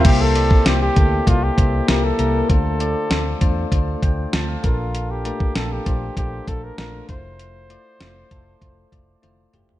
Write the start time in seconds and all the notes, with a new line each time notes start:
0.04 C2 C3 A#3 E4 G4 C5, kick, closed hi-hat, crash
0.21 A4
0.35 A#3 E4 G4 D5, closed hi-hat
0.51 kick
0.65 C2 A#3 E4 G4 C5, snare, closed hi-hat
0.82 G4
0.96 D2 A#3 E4 G4 A4, kick, closed hi-hat
1.26 C2 A#3 E4 F4 G4 D5, kick, closed hi-hat
1.43 G4
1.57 C2 A#3 E4 G4 C5, kick, closed hi-hat
1.88 C2 A#3 E4 G4 A#4, snare, closed hi-hat
2.04 A4
2.18 C2 A#3 E4 G4 A#4, closed hi-hat
2.49 D2 D3 A3 D4 F4 A4 C5, kick, closed hi-hat
2.80 A3 D4 F4 D5, closed hi-hat
3.10 D2 A3 D4 F4 C5, snare, closed hi-hat
3.41 E2 A3 D4 F4 C5, kick, closed hi-hat
3.72 D2 A3 D4 F4 C5, kick, closed hi-hat
4.03 D2 G5, kick, closed hi-hat
4.33 D2 A5, snare, closed hi-hat
4.49 F5
4.63 A#1 A#2 D4 F4 A4 A#4, kick, closed hi-hat
4.95 closed hi-hat
5.11 G4
5.25 A3 D4 F4 A#4, closed hi-hat
5.40 kick
5.55 A#1 A3 D4 F4 A4, snare, closed hi-hat
5.72 G4
5.86 A#1 A3 D4 F4 C5, kick, closed hi-hat
6.17 A#1 A3 D4 F4 G4 C5, kick, closed hi-hat
6.47 A#1 A3 D4 F4 A4, kick, closed hi-hat
6.64 A#4
6.78 A#1 A3 D4 F4 A#4, snare, closed hi-hat
7.08 F1 A3 E4 F4 C5, kick, closed hi-hat
7.39 closed hi-hat
7.69 A3 E4 F4 D5, closed hi-hat
8.00 F1 A3 E4 F4 C5, snare, closed hi-hat
8.31 F1 A3 E4 F4 A4, kick, closed hi-hat
8.61 F1 A3 E4 F4 C5, kick, closed hi-hat
8.92 F1 A3 E4 F4 D5, kick, closed hi-hat
9.22 F1 A3 E4 F4 C5, closed hi-hat, high tom
9.53 F1 A3 E4 F4 G4, closed hi-hat, mid tom
9.69 floor tom